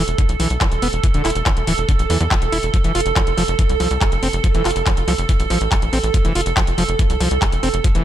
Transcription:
0.00 8.04 A4 medium
0.08 0.15 E1 medium
0.08 closed hi-hat medium
0.18 0.22 D3 medium
0.18 kick loud
0.18 closed hi-hat medium
0.29 0.37 B1 medium
0.29 closed hi-hat medium
0.40 0.47 B1 loud
0.40 0.48 E3 medium
0.40 open hi-hat loud
0.50 0.58 B1 medium
0.50 closed hi-hat medium
0.61 0.66 E3 medium
0.61 kick loud
0.61 clap loud
0.61 closed hi-hat medium
0.72 0.79 E1 medium
0.72 closed hi-hat soft
0.82 0.90 E1 loud
0.82 0.88 B3 medium
0.82 open hi-hat loud
0.93 1.00 E1 loud
0.93 closed hi-hat medium
1.04 1.07 E3 medium
1.04 kick loud
1.04 closed hi-hat medium
1.14 1.22 E1 medium
1.14 1.22 D3 medium
1.14 closed hi-hat soft
1.25 1.32 E1 loud
1.25 1.30 E4 medium
1.25 clap medium
1.25 open hi-hat loud
1.30 closed hi-hat medium
1.35 1.43 E1 loud
1.35 closed hi-hat medium
1.46 1.52 E3 medium
1.46 kick loud
1.46 clap loud
1.46 closed hi-hat medium
1.57 1.64 E1 medium
1.57 closed hi-hat medium
1.67 1.75 D1 loud
1.67 1.73 E3 loud
1.67 open hi-hat loud
1.78 1.85 E1 medium
1.78 closed hi-hat medium
1.89 1.92 D3 medium
1.89 kick loud
1.89 closed hi-hat medium
1.99 2.07 A1 medium
1.99 closed hi-hat medium
2.10 2.17 E2 loud
2.10 2.18 E3 medium
2.10 open hi-hat loud
2.21 2.28 E2 loud
2.21 2.24 E3 medium
2.21 closed hi-hat medium
2.31 2.37 F3 medium
2.31 kick loud
2.31 clap loud
2.31 closed hi-hat medium
2.42 2.49 E1 medium
2.42 closed hi-hat medium
2.52 2.60 E1 medium
2.52 2.58 E4 medium
2.52 open hi-hat loud
2.63 2.71 E1 loud
2.63 closed hi-hat medium
2.74 2.77 F3 medium
2.74 kick loud
2.74 closed hi-hat medium
2.84 2.92 F1 medium
2.84 2.93 E3 medium
2.84 closed hi-hat medium
2.95 3.03 F1 loud
2.95 3.00 F4 medium
2.95 open hi-hat loud
3.00 closed hi-hat medium
3.06 3.13 F1 loud
3.06 closed hi-hat medium
3.16 3.22 F3 medium
3.16 kick loud
3.16 clap loud
3.16 closed hi-hat medium
3.27 3.34 F1 medium
3.27 closed hi-hat medium
3.38 3.45 F1 loud
3.38 3.43 F3 loud
3.38 open hi-hat loud
3.48 3.56 F1 medium
3.48 closed hi-hat medium
3.59 3.62 E3 medium
3.59 kick loud
3.59 closed hi-hat medium
3.69 3.77 C2 medium
3.69 closed hi-hat medium
3.80 3.88 C2 loud
3.80 3.88 F3 medium
3.80 open hi-hat loud
3.91 3.98 C2 loud
3.91 closed hi-hat medium
4.01 4.05 G3 medium
4.01 kick loud
4.01 clap loud
4.01 closed hi-hat medium
4.12 4.20 F1 medium
4.12 closed hi-hat soft
4.23 4.30 F1 medium
4.23 4.28 C4 medium
4.23 open hi-hat loud
4.33 4.41 F1 medium
4.33 closed hi-hat medium
4.44 4.47 F3 medium
4.44 kick loud
4.44 closed hi-hat medium
4.55 4.62 F1 medium
4.55 4.63 E3 medium
4.55 closed hi-hat medium
4.65 4.73 F1 loud
4.65 4.71 F4 medium
4.65 clap medium
4.65 open hi-hat loud
4.71 closed hi-hat medium
4.76 4.83 F1 loud
4.76 closed hi-hat medium
4.86 4.92 F3 medium
4.86 kick loud
4.86 clap loud
4.86 closed hi-hat medium
4.97 5.05 F1 medium
4.97 closed hi-hat medium
5.08 5.15 C2 loud
5.08 5.13 F3 loud
5.08 open hi-hat loud
5.18 5.26 F1 loud
5.18 closed hi-hat medium
5.29 5.32 E3 medium
5.29 kick loud
5.29 closed hi-hat medium
5.40 5.47 A1 medium
5.40 closed hi-hat medium
5.50 5.58 A1 loud
5.50 5.59 F3 medium
5.50 open hi-hat loud
5.61 5.68 A1 loud
5.61 closed hi-hat medium
5.72 5.75 G3 medium
5.72 kick loud
5.72 clap loud
5.72 closed hi-hat medium
5.82 5.90 A1 medium
5.82 closed hi-hat medium
5.93 6.00 A1 loud
5.93 5.98 C4 medium
5.93 open hi-hat loud
6.04 6.11 A1 medium
6.04 closed hi-hat medium
6.14 6.17 F3 medium
6.14 kick loud
6.14 closed hi-hat medium
6.25 6.32 F1 medium
6.25 6.33 E3 medium
6.25 closed hi-hat medium
6.35 6.43 F1 loud
6.35 6.41 F4 medium
6.35 open hi-hat loud
6.41 closed hi-hat medium
6.46 6.54 F1 loud
6.46 closed hi-hat medium
6.57 6.62 F3 medium
6.57 kick loud
6.57 clap loud
6.57 closed hi-hat medium
6.67 6.75 F1 medium
6.67 closed hi-hat medium
6.78 6.85 F1 loud
6.78 6.83 F3 loud
6.78 open hi-hat loud
6.89 6.96 F1 medium
6.89 closed hi-hat medium
6.99 7.03 E3 medium
6.99 kick loud
6.99 closed hi-hat medium
7.10 7.17 C2 medium
7.10 closed hi-hat medium
7.20 7.28 C2 loud
7.20 7.29 F3 medium
7.20 open hi-hat loud
7.31 7.39 C2 loud
7.31 closed hi-hat medium
7.42 7.45 G3 medium
7.42 kick loud
7.42 clap loud
7.42 closed hi-hat medium
7.52 7.60 F1 medium
7.52 closed hi-hat medium
7.63 7.71 F1 loud
7.63 7.69 C4 medium
7.63 open hi-hat loud
7.74 7.81 F1 loud
7.74 closed hi-hat medium
7.84 7.88 F3 medium
7.84 kick loud
7.84 closed hi-hat medium
7.95 8.03 F1 medium
7.95 8.03 E3 medium
7.95 closed hi-hat medium

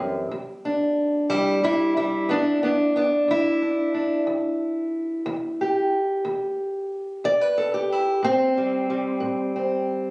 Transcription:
0.00 0.31 F#2 medium
0.00 0.27 E3 soft
0.00 0.27 C4 soft
0.00 1.30 G4 soft
0.31 0.90 E2 medium
0.65 2.30 D4 soft
1.30 1.90 E2 medium
1.30 1.62 G3 medium
1.30 1.63 E4 medium
1.63 1.95 G3 medium
1.63 1.96 E4 medium
1.97 2.29 G3 medium
1.97 2.96 E4 medium
2.29 2.88 E2 medium
2.29 2.34 B3 medium
2.29 2.62 D4 medium
2.63 2.68 B3 medium
2.63 2.96 D4 medium
2.96 3.01 B3 medium
2.96 3.61 D4 medium
3.28 3.87 E2 medium
3.28 5.93 E4 loud
3.62 3.93 D4 soft
3.94 4.23 D4 soft
4.27 4.86 E2 medium
5.26 5.85 E2 medium
5.61 7.57 G4 soft
6.25 6.84 E2 medium
7.24 7.83 E2 medium
7.24 7.41 D5 medium
7.41 7.92 B4 medium
7.58 7.74 A4 medium
7.74 8.23 G4 medium
7.92 8.24 E4 medium
8.23 8.82 A2 medium
8.23 9.55 C4 loud
8.57 8.89 G3 soft
8.90 10.11 G3 soft
9.20 9.80 A2 medium
9.56 10.11 C4 soft

